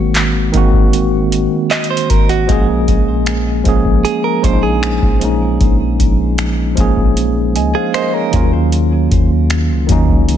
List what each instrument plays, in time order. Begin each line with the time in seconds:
Already playing: 808-style bass G#1, tine electric piano D#3 G#3 A#3 C4 F#4
0.15 clap, closed hi-hat
0.52 808-style bass G#1, tine electric piano D#3 G#3 A#3 C4, kick, closed hi-hat
0.57 tine electric piano F#4
0.73 kick
0.93 closed hi-hat
1.32 closed hi-hat
1.71 clean electric guitar D#5, clap, closed hi-hat
1.84 closed hi-hat
1.90 clean electric guitar C5
1.97 closed hi-hat
2.10 808-style bass G#1, clean electric guitar A#4, kick, closed hi-hat
2.29 clean electric guitar F#4, closed hi-hat
2.47 808-style bass A#1, tine electric piano F3 G#3 A#3 C#4, kick, closed hi-hat
2.52 tine electric piano G#4
2.88 808-style bass A#1, kick, closed hi-hat
3.26 finger snap, closed hi-hat
3.64 808-style bass A#1, tine electric piano F3 G#3 A#3 C#4, kick, closed hi-hat
3.69 tine electric piano G#4
3.85 kick
4.05 clean electric guitar G#4, closed hi-hat
4.24 clean electric guitar A#4
4.42 808-style bass A#1, tine electric piano F3 G#3 A#3 C#4, clean electric guitar C5, kick, closed hi-hat
4.47 tine electric piano D4
4.53 tine electric piano D#4
4.63 clean electric guitar G#4
4.83 finger snap, closed hi-hat
5.02 808-style bass A#1, kick
5.20 tine electric piano F3 G#3 A#3 C#4, closed hi-hat
5.24 tine electric piano D#4
5.60 808-style bass A#1, kick, closed hi-hat
6.00 808-style bass A#1, kick, closed hi-hat
6.38 finger snap, closed hi-hat
6.76 808-style bass A#1, tine electric piano F3 G#3 A#3 C#4, kick, closed hi-hat
6.80 tine electric piano G#4
6.97 kick
7.17 closed hi-hat
7.56 808-style bass C#2, tine electric piano D#5 G#5, closed hi-hat
7.75 clean electric guitar G#4, tine electric piano C5 F5
7.94 tine electric piano A#4 D#5, clean electric guitar C5, finger snap, closed hi-hat
8.14 tine electric piano G#4 C#5, clean electric guitar A#4
8.31 808-style bass D#2, tine electric piano D#3 F3 A#3 C#4, kick, closed hi-hat
8.36 tine electric piano F#3 F4
8.72 closed hi-hat
9.11 808-style bass D#2, kick, closed hi-hat
9.50 finger snap, closed hi-hat
9.70 808-style bass C#2
9.87 808-style bass D#2, tine electric piano D#3 F#3 A#3 C#4, kick, closed hi-hat
9.92 tine electric piano D#4
10.08 808-style bass C#2, kick
10.29 closed hi-hat